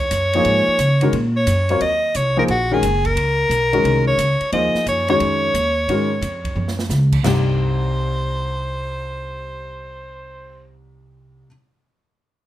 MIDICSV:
0, 0, Header, 1, 6, 480
1, 0, Start_track
1, 0, Tempo, 339559
1, 636, Time_signature, 4, 2, 24, 8
1, 17622, End_track
2, 0, Start_track
2, 0, Title_t, "Soprano saxophone"
2, 0, Program_c, 0, 64
2, 0, Note_on_c, 0, 73, 112
2, 1855, Note_off_c, 0, 73, 0
2, 1930, Note_on_c, 0, 73, 94
2, 2522, Note_off_c, 0, 73, 0
2, 2565, Note_on_c, 0, 75, 97
2, 3054, Note_on_c, 0, 73, 92
2, 3075, Note_off_c, 0, 75, 0
2, 3355, Note_off_c, 0, 73, 0
2, 3376, Note_on_c, 0, 70, 83
2, 3445, Note_off_c, 0, 70, 0
2, 3541, Note_on_c, 0, 66, 100
2, 3861, Note_on_c, 0, 68, 92
2, 3882, Note_off_c, 0, 66, 0
2, 4329, Note_on_c, 0, 70, 114
2, 4350, Note_off_c, 0, 68, 0
2, 5753, Note_off_c, 0, 70, 0
2, 5761, Note_on_c, 0, 73, 95
2, 6357, Note_off_c, 0, 73, 0
2, 6405, Note_on_c, 0, 75, 94
2, 6847, Note_off_c, 0, 75, 0
2, 6906, Note_on_c, 0, 73, 87
2, 7181, Note_off_c, 0, 73, 0
2, 7206, Note_on_c, 0, 73, 97
2, 9710, Note_off_c, 0, 73, 0
2, 10253, Note_on_c, 0, 72, 81
2, 15161, Note_off_c, 0, 72, 0
2, 17622, End_track
3, 0, Start_track
3, 0, Title_t, "Grand piano"
3, 0, Program_c, 1, 0
3, 492, Note_on_c, 1, 53, 65
3, 497, Note_on_c, 1, 58, 63
3, 502, Note_on_c, 1, 63, 65
3, 504, Note_on_c, 1, 68, 63
3, 504, Note_on_c, 1, 73, 73
3, 1094, Note_off_c, 1, 53, 0
3, 1097, Note_off_c, 1, 58, 0
3, 1099, Note_off_c, 1, 63, 0
3, 1100, Note_off_c, 1, 68, 0
3, 1100, Note_off_c, 1, 73, 0
3, 1441, Note_on_c, 1, 51, 73
3, 1441, Note_on_c, 1, 56, 61
3, 1445, Note_on_c, 1, 61, 64
3, 1445, Note_on_c, 1, 66, 65
3, 1449, Note_on_c, 1, 70, 74
3, 1586, Note_off_c, 1, 51, 0
3, 1586, Note_off_c, 1, 56, 0
3, 1588, Note_off_c, 1, 61, 0
3, 1588, Note_off_c, 1, 66, 0
3, 1590, Note_off_c, 1, 70, 0
3, 2402, Note_on_c, 1, 54, 65
3, 2407, Note_on_c, 1, 60, 64
3, 2410, Note_on_c, 1, 65, 55
3, 2415, Note_on_c, 1, 70, 60
3, 2418, Note_on_c, 1, 73, 76
3, 2563, Note_off_c, 1, 54, 0
3, 2565, Note_off_c, 1, 60, 0
3, 2567, Note_off_c, 1, 65, 0
3, 2569, Note_off_c, 1, 70, 0
3, 2571, Note_off_c, 1, 73, 0
3, 3349, Note_on_c, 1, 53, 71
3, 3354, Note_on_c, 1, 58, 62
3, 3356, Note_on_c, 1, 63, 67
3, 3359, Note_on_c, 1, 68, 72
3, 3365, Note_on_c, 1, 72, 77
3, 3499, Note_off_c, 1, 53, 0
3, 3502, Note_off_c, 1, 58, 0
3, 3503, Note_off_c, 1, 63, 0
3, 3504, Note_off_c, 1, 68, 0
3, 3507, Note_off_c, 1, 72, 0
3, 3833, Note_on_c, 1, 51, 68
3, 3834, Note_on_c, 1, 56, 56
3, 3836, Note_on_c, 1, 61, 66
3, 3839, Note_on_c, 1, 66, 59
3, 3841, Note_on_c, 1, 70, 74
3, 3981, Note_off_c, 1, 51, 0
3, 3982, Note_off_c, 1, 56, 0
3, 3983, Note_off_c, 1, 61, 0
3, 3984, Note_off_c, 1, 66, 0
3, 3985, Note_off_c, 1, 70, 0
3, 5267, Note_on_c, 1, 56, 65
3, 5268, Note_on_c, 1, 51, 65
3, 5272, Note_on_c, 1, 61, 64
3, 5279, Note_on_c, 1, 66, 63
3, 5281, Note_on_c, 1, 70, 73
3, 5881, Note_off_c, 1, 56, 0
3, 5882, Note_off_c, 1, 51, 0
3, 5884, Note_off_c, 1, 61, 0
3, 5887, Note_off_c, 1, 66, 0
3, 5888, Note_off_c, 1, 70, 0
3, 6396, Note_on_c, 1, 53, 54
3, 6403, Note_on_c, 1, 58, 51
3, 6406, Note_on_c, 1, 63, 49
3, 6410, Note_on_c, 1, 72, 62
3, 6413, Note_on_c, 1, 68, 49
3, 7124, Note_off_c, 1, 53, 0
3, 7128, Note_off_c, 1, 58, 0
3, 7129, Note_off_c, 1, 63, 0
3, 7131, Note_off_c, 1, 72, 0
3, 7133, Note_off_c, 1, 68, 0
3, 7194, Note_on_c, 1, 56, 61
3, 7196, Note_on_c, 1, 51, 72
3, 7202, Note_on_c, 1, 66, 63
3, 7203, Note_on_c, 1, 61, 64
3, 7205, Note_on_c, 1, 73, 85
3, 7805, Note_off_c, 1, 56, 0
3, 7807, Note_off_c, 1, 51, 0
3, 7809, Note_off_c, 1, 66, 0
3, 7810, Note_off_c, 1, 61, 0
3, 7811, Note_off_c, 1, 73, 0
3, 8328, Note_on_c, 1, 51, 59
3, 8330, Note_on_c, 1, 56, 56
3, 8335, Note_on_c, 1, 61, 53
3, 8336, Note_on_c, 1, 66, 56
3, 8342, Note_on_c, 1, 70, 64
3, 8602, Note_off_c, 1, 51, 0
3, 8603, Note_off_c, 1, 56, 0
3, 8606, Note_off_c, 1, 61, 0
3, 8606, Note_off_c, 1, 66, 0
3, 8609, Note_off_c, 1, 70, 0
3, 10231, Note_on_c, 1, 36, 64
3, 10238, Note_on_c, 1, 48, 58
3, 10251, Note_on_c, 1, 55, 58
3, 10264, Note_on_c, 1, 63, 54
3, 10277, Note_on_c, 1, 67, 66
3, 16196, Note_off_c, 1, 36, 0
3, 16199, Note_off_c, 1, 48, 0
3, 16206, Note_off_c, 1, 55, 0
3, 16212, Note_off_c, 1, 63, 0
3, 16219, Note_off_c, 1, 67, 0
3, 17622, End_track
4, 0, Start_track
4, 0, Title_t, "Upright bass"
4, 0, Program_c, 2, 32
4, 157, Note_on_c, 2, 42, 98
4, 622, Note_off_c, 2, 42, 0
4, 640, Note_on_c, 2, 44, 84
4, 927, Note_off_c, 2, 44, 0
4, 1110, Note_on_c, 2, 49, 86
4, 1578, Note_off_c, 2, 49, 0
4, 1593, Note_on_c, 2, 46, 92
4, 2059, Note_off_c, 2, 46, 0
4, 2074, Note_on_c, 2, 42, 91
4, 2540, Note_off_c, 2, 42, 0
4, 2558, Note_on_c, 2, 39, 80
4, 3022, Note_off_c, 2, 39, 0
4, 3041, Note_on_c, 2, 36, 84
4, 3503, Note_off_c, 2, 36, 0
4, 3511, Note_on_c, 2, 34, 87
4, 3978, Note_off_c, 2, 34, 0
4, 3997, Note_on_c, 2, 30, 90
4, 4453, Note_off_c, 2, 30, 0
4, 4461, Note_on_c, 2, 37, 81
4, 4933, Note_off_c, 2, 37, 0
4, 4941, Note_on_c, 2, 35, 88
4, 5413, Note_off_c, 2, 35, 0
4, 5424, Note_on_c, 2, 36, 87
4, 5895, Note_off_c, 2, 36, 0
4, 5904, Note_on_c, 2, 37, 94
4, 6198, Note_off_c, 2, 37, 0
4, 6396, Note_on_c, 2, 39, 75
4, 6684, Note_off_c, 2, 39, 0
4, 6875, Note_on_c, 2, 42, 87
4, 7341, Note_off_c, 2, 42, 0
4, 7356, Note_on_c, 2, 41, 85
4, 7821, Note_off_c, 2, 41, 0
4, 7830, Note_on_c, 2, 39, 85
4, 8299, Note_off_c, 2, 39, 0
4, 8310, Note_on_c, 2, 44, 75
4, 8774, Note_off_c, 2, 44, 0
4, 8783, Note_on_c, 2, 41, 82
4, 9255, Note_off_c, 2, 41, 0
4, 9265, Note_on_c, 2, 42, 83
4, 9736, Note_off_c, 2, 42, 0
4, 9746, Note_on_c, 2, 37, 91
4, 10217, Note_off_c, 2, 37, 0
4, 10223, Note_on_c, 2, 36, 77
4, 16135, Note_off_c, 2, 36, 0
4, 17622, End_track
5, 0, Start_track
5, 0, Title_t, "Muted upright bass strokes"
5, 956, Note_on_c, 9, 29, 39
5, 1097, Note_off_c, 9, 29, 0
5, 6226, Note_on_c, 9, 29, 38
5, 6367, Note_off_c, 9, 29, 0
5, 6708, Note_on_c, 9, 29, 36
5, 6849, Note_off_c, 9, 29, 0
5, 17622, End_track
6, 0, Start_track
6, 0, Title_t, "Drums"
6, 152, Note_on_c, 9, 44, 59
6, 152, Note_on_c, 9, 51, 72
6, 293, Note_off_c, 9, 44, 0
6, 293, Note_off_c, 9, 51, 0
6, 471, Note_on_c, 9, 51, 45
6, 612, Note_off_c, 9, 51, 0
6, 631, Note_on_c, 9, 51, 57
6, 772, Note_off_c, 9, 51, 0
6, 1112, Note_on_c, 9, 44, 52
6, 1112, Note_on_c, 9, 51, 61
6, 1253, Note_off_c, 9, 44, 0
6, 1253, Note_off_c, 9, 51, 0
6, 1427, Note_on_c, 9, 51, 50
6, 1568, Note_off_c, 9, 51, 0
6, 1594, Note_on_c, 9, 51, 55
6, 1736, Note_off_c, 9, 51, 0
6, 2074, Note_on_c, 9, 44, 63
6, 2074, Note_on_c, 9, 51, 67
6, 2215, Note_off_c, 9, 44, 0
6, 2215, Note_off_c, 9, 51, 0
6, 2387, Note_on_c, 9, 51, 49
6, 2528, Note_off_c, 9, 51, 0
6, 2552, Note_on_c, 9, 51, 60
6, 2693, Note_off_c, 9, 51, 0
6, 3033, Note_on_c, 9, 44, 46
6, 3033, Note_on_c, 9, 51, 59
6, 3174, Note_off_c, 9, 44, 0
6, 3174, Note_off_c, 9, 51, 0
6, 3509, Note_on_c, 9, 51, 56
6, 3650, Note_off_c, 9, 51, 0
6, 3996, Note_on_c, 9, 44, 56
6, 3996, Note_on_c, 9, 51, 70
6, 4137, Note_off_c, 9, 44, 0
6, 4137, Note_off_c, 9, 51, 0
6, 4308, Note_on_c, 9, 51, 45
6, 4309, Note_on_c, 9, 36, 53
6, 4449, Note_off_c, 9, 51, 0
6, 4450, Note_off_c, 9, 36, 0
6, 4479, Note_on_c, 9, 51, 67
6, 4620, Note_off_c, 9, 51, 0
6, 4960, Note_on_c, 9, 44, 50
6, 4960, Note_on_c, 9, 51, 57
6, 5101, Note_off_c, 9, 44, 0
6, 5101, Note_off_c, 9, 51, 0
6, 5274, Note_on_c, 9, 51, 44
6, 5415, Note_off_c, 9, 51, 0
6, 5442, Note_on_c, 9, 51, 57
6, 5583, Note_off_c, 9, 51, 0
6, 5916, Note_on_c, 9, 44, 57
6, 5916, Note_on_c, 9, 51, 67
6, 6058, Note_off_c, 9, 44, 0
6, 6058, Note_off_c, 9, 51, 0
6, 6227, Note_on_c, 9, 51, 44
6, 6369, Note_off_c, 9, 51, 0
6, 6395, Note_on_c, 9, 51, 59
6, 6537, Note_off_c, 9, 51, 0
6, 6712, Note_on_c, 9, 38, 43
6, 6853, Note_off_c, 9, 38, 0
6, 6877, Note_on_c, 9, 44, 45
6, 6877, Note_on_c, 9, 51, 57
6, 7019, Note_off_c, 9, 44, 0
6, 7019, Note_off_c, 9, 51, 0
6, 7185, Note_on_c, 9, 51, 47
6, 7327, Note_off_c, 9, 51, 0
6, 7353, Note_on_c, 9, 51, 58
6, 7494, Note_off_c, 9, 51, 0
6, 7839, Note_on_c, 9, 44, 56
6, 7839, Note_on_c, 9, 51, 67
6, 7980, Note_off_c, 9, 44, 0
6, 7980, Note_off_c, 9, 51, 0
6, 8322, Note_on_c, 9, 51, 55
6, 8463, Note_off_c, 9, 51, 0
6, 8797, Note_on_c, 9, 44, 54
6, 8797, Note_on_c, 9, 51, 57
6, 8938, Note_off_c, 9, 44, 0
6, 8938, Note_off_c, 9, 51, 0
6, 9112, Note_on_c, 9, 36, 54
6, 9116, Note_on_c, 9, 51, 47
6, 9253, Note_off_c, 9, 36, 0
6, 9257, Note_off_c, 9, 51, 0
6, 9284, Note_on_c, 9, 48, 42
6, 9425, Note_off_c, 9, 48, 0
6, 9443, Note_on_c, 9, 38, 51
6, 9585, Note_off_c, 9, 38, 0
6, 9598, Note_on_c, 9, 38, 75
6, 9739, Note_off_c, 9, 38, 0
6, 9753, Note_on_c, 9, 44, 56
6, 9756, Note_on_c, 9, 38, 52
6, 9894, Note_off_c, 9, 44, 0
6, 9897, Note_off_c, 9, 38, 0
6, 10068, Note_on_c, 9, 36, 68
6, 10070, Note_on_c, 9, 49, 68
6, 10209, Note_off_c, 9, 36, 0
6, 10212, Note_off_c, 9, 49, 0
6, 10238, Note_on_c, 9, 38, 90
6, 10238, Note_on_c, 9, 43, 91
6, 10238, Note_on_c, 9, 57, 72
6, 10379, Note_off_c, 9, 38, 0
6, 10379, Note_off_c, 9, 43, 0
6, 10379, Note_off_c, 9, 57, 0
6, 17622, End_track
0, 0, End_of_file